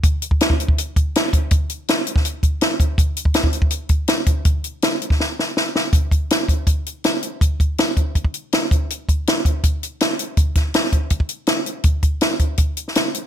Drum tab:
HH |x-x-x-x-x-x-x-x-|x-x-x-x-x-x-x-x-|x-x-x-x-x-x-x-x-|x-x-x-x---------|
SD |----o-------o---|----o--o----o---|----o-------o---|----o--oo-o-o-o-|
BD |o--o-o-o--o---o-|o------o--o---o-|o--o-o-o--o---o-|o------o--------|

HH |x-x-x-x-x-x-x-x-|x-x-x-x-x-x-x-x-|x-x-x-x-x-x-x-x-|x-x-x-x-x-x-x-x-|
SD |----o-------o---|----o-------o---|----o-------o---|--o-oo------o---|
BD |o-o---o-o-------|o-o---o-oo----o-|--o---o-o-------|o-o---o-oo------|

HH |x-x-x-x-x-x-x-x-|
SD |----o------oo---|
BD |o-o---o-o-------|